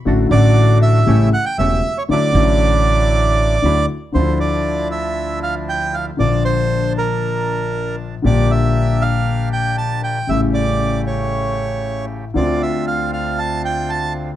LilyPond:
<<
  \new Staff \with { instrumentName = "Bandoneon" } { \time 4/4 \key d \major \tempo 4 = 117 r8 d''4 e''4 fis''16 g''16 e''8. cis''16 | d''2.~ d''8 r8 | \key d \minor c''8 d''4 e''4 f''8 g''8 f''8 | d''8 c''4 bes'2 r8 |
d''8 e''4 f''4 g''8 a''8 g''8 | e''8 d''4 cis''2 r8 | d''8 e''8 f''8 f''8 a''8 g''8 a''8 r8 | }
  \new Staff \with { instrumentName = "Bandoneon" } { \time 4/4 \key d \major <a d' fis'>8 <a d' fis'>4. <a cis' g'>8 r8 <a cis' g'>8 r8 | <fis d' e'>8 <fis d' e'>2~ <fis d' e'>8 <fis d' e'>8 r8 | \key d \minor <f d' e'>1 | <d' a''>1 |
<bes d' g'>1 | <cis a g'>1 | <c' d' f'>1 | }
  \new Staff \with { instrumentName = "Grand piano" } { \clef bass \time 4/4 \key d \major <a,, a, d fis a fis'>8 <a,, a, d fis a fis'>4. <a,, a, cis g a e'>8 r8 <e,, e, cis g a e'>8 r8 | <d, d fis a e'>8 <a,, a, d fis a e'>2~ <a,, a, d fis a e'>8 <d, d fis a e'>8 r8 | \key d \minor <d, d f a e'>1 | <bes,, bes, d f bes f'>1 |
<bes,, bes, d g bes g'>1 | <a,, a, cis g a e'>1 | <d, d a c' f'>1 | }
  \new Staff \with { instrumentName = "Upright bass" } { \clef bass \time 4/4 \key d \major a,,8 a,,4. a,,8 r8 e,,8 r8 | d,8 a,,2~ a,,8 d,8 r8 | \key d \minor d,1 | bes,,1 |
bes,,1 | a,,1 | d,1 | }
>>